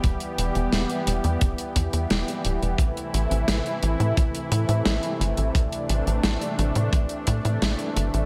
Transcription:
<<
  \new Staff \with { instrumentName = "Analog synth pad" } { \time 4/4 \key a \dorian \tempo 4 = 87 << { <g g'>1 | e'1 | d'1 | } \\ { <e b>1 | <c a>1~ | <c a>1 | } >> }
  \new Staff \with { instrumentName = "Analog synth bass" } { \clef bass \time 4/4 \key a \dorian e,,16 r16 e,,16 e,,16 e,,16 r16 e,,16 e,16 e,,16 r16 e,16 e,16 e,,16 r16 d,,16 e,,16 | a,,16 r16 a,,16 a,,16 a,,16 r16 a,,16 a,16 a,,16 r16 a,16 a,16 a,,16 r16 g,,16 a,,16 | a,,16 r16 a,,16 a,,16 a,,16 r16 a,,16 a,16 a,,16 r16 a,16 a,16 a,,16 r16 g,,16 a,,16 | }
  \new DrumStaff \with { instrumentName = "Drums" } \drummode { \time 4/4 <hh bd>16 hh16 hh16 hh16 <hh sn>16 hh16 hh16 hh16 <hh bd>16 hh16 <hh bd>16 hh16 <hh sn>16 hh16 hh16 hh16 | <hh bd>16 hh16 hh16 hh16 <hh sn>16 hh16 hh16 hh16 <hh bd>16 hh16 hh16 hh16 <hh sn>16 hh16 hh16 hh16 | <hh bd>16 hh16 hh16 hh16 <hh sn>16 hh16 hh16 hh16 <hh bd>16 hh16 <hh bd>16 hh16 <hh sn>16 hh16 hh16 hh16 | }
>>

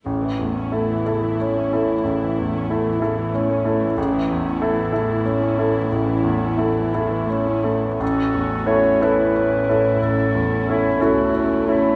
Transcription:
<<
  \new Staff \with { instrumentName = "Clarinet" } { \time 12/8 \key a \major \tempo 4. = 60 r1. | r1. | a'4 cis''8 b'4. a'4 e'8 fis'4 e'8 | }
  \new Staff \with { instrumentName = "Grand piano" } { \time 12/8 \key a \major a,,8 e,8 <e' a'>8 <e' a'>8 cis'8 <e' a'>8 a,,8 e,8 <e' a'>8 <e' a'>8 cis'8 <e' a'>8 | a,,8 e,8 <e' a'>8 <e' a'>8 cis'8 <e' a'>8 a,,8 e,8 <e' a'>8 <e' a'>8 cis'8 <e' a'>8 | a,,8 e,8 <cis' e' a'>8 <cis' e' a'>8 cis'8 <cis' e' a'>8 a,,8 e,8 <cis' e' a'>8 <cis' e' a'>8 cis'8 <cis' e' a'>8 | }
  \new Staff \with { instrumentName = "Viola section" } { \time 12/8 \key a \major << { e'1. | e'1~ e'4. r8 | fis'4. e'2. e'4. | } \\ { cis16 e16 a16 cis'16 a16 e16 cis16 e16 a16 cis'16 a16 e16 cis16 e16 a16 cis'16 a16 e16 cis16 e16 a16 cis'16 a16 e16 | cis16 e16 a16 cis'16 a16 e16 cis16 e16 a16 cis'16 a16 e16 cis16 e16 a16 cis'16 a16 e16 cis16 e16 a16 cis'16 a16 e16 | cis'4. e'4. cis'4. a4. | } >> }
  \new Staff \with { instrumentName = "Cello section" } { \clef bass \time 12/8 \key a \major a,1. | a,1~ a,4. r8 | a,1~ a,8 cis,4. | }
>>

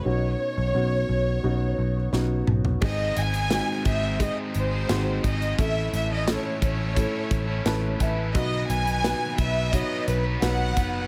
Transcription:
<<
  \new Staff \with { instrumentName = "Violin section" } { \time 4/4 \key gis \phrygian \tempo 4 = 87 cis''2.~ cis''8 r8 | dis''8 gis''4 e''8 dis''8 bis'4 dis''8 | e''8 e''16 dis''16 cis''8 cis''2 r8 | dis''8 gis''4 e''8 dis''8 b'8 fis''4 | }
  \new Staff \with { instrumentName = "Upright piano" } { \time 4/4 \key gis \phrygian <b cis' dis' fis'>8. r16 <b cis' dis' fis'>8. r16 <b cis' dis' fis'>8. r16 <b cis' dis' fis'>8. r16 | <gis bis dis' gis'>8. r16 <gis bis dis' fis'>8. r16 <gis bis dis' gis'>8. r16 <gis bis dis' fis'>8. r16 | <a cis' e' a'>8. r16 <a cis' e' a'>8. r16 <a cis' e' a'>8. r16 <a cis' e' b'>8. r16 | <b dis' fis' b'>8. r16 <b dis' fis' b'>8. r16 <b dis' fis' cis''>8. r16 <b dis' fis' b'>8. r16 | }
  \new Staff \with { instrumentName = "Upright piano" } { \clef bass \time 4/4 \key gis \phrygian b,4. r2 r8 | gis,4. r2 r8 | a,4. r4. a''8 e''8 | b,4. r2 r8 | }
  \new Staff \with { instrumentName = "Overdriven electric guitar" } { \time 4/4 \key gis \phrygian r1 | <gis, dis gis bis dis' gis'>8. <gis, dis gis bis dis' gis'>8. <gis bis dis' gis'>8 <gis bis dis' gis'>8. <gis bis dis' gis'>8. <gis bis dis' gis'>8 | <a, e a cis' e' a'>8. <a, e a cis' e' a'>8. <a cis' e' a'>8 <a cis' e' a'>8. <a cis' e' a'>8. <a cis' e' a'>8 | <b, dis fis b dis' b'>8. <b, dis fis b dis' b'>8. <fis b dis' b'>8 <fis b dis' b'>8. <fis b dis' b'>8. <fis b dis' b'>8 | }
  \new Staff \with { instrumentName = "Picked electric bass" } { \clef bass \time 4/4 \key gis \phrygian b,,8 r16 b,,16 b,,8 b,,8 b,,8 b,,8 b,,8 b,,8 | gis,,8 gis,,8. r16 gis,,8. r16 gis,,8 gis,,8 gis,,8 | a,,8 a,,8. r16 a,,8. r16 a,,8 a,,8 a,,8 | b,,8 b,,8. r16 b,,8. r16 b,,8 b,,8 fis,,8 | }
  \new DrumStaff \with { instrumentName = "Drums" } \drummode { \time 4/4 r4 r4 r4 sn8 toml16 tomfh16 | <cymc bd>8 hh16 hh16 <hh sn>8 <hh bd>8 <hh bd>8 hh8 <hh sn>8 <hh bd>16 hh16 | <hh bd>8 hh8 <hh sn>8 <hh bd>8 <hh bd>8 <hh bd>8 <hh sn>8 <hh bd>8 | <hh bd>8 hh16 hh16 <hh sn>8 <hh bd>8 <hh bd>8 hh8 <hh sn>8 <hh bd sn>8 | }
>>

